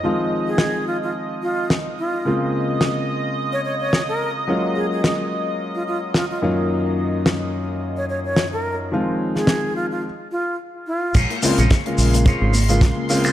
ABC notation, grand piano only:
X:1
M:4/4
L:1/16
Q:"Swing 16ths" 1/4=108
K:Bbm
V:1 name="Grand piano"
[E,F,A,CF]16 | [D,A,B,CF]16 | [G,A,B,DF]12- [G,A,B,DF]2 [G,,E,G,B,DF]2- | [G,,E,G,B,DF]16 |
[E,F,A,CF]8 z8 | z2 [D,A,B,CF] z2 [D,A,B,F]3 [D,A,B,CF]2 z [D,A,B,F]3 [D,A,B,CF] z |]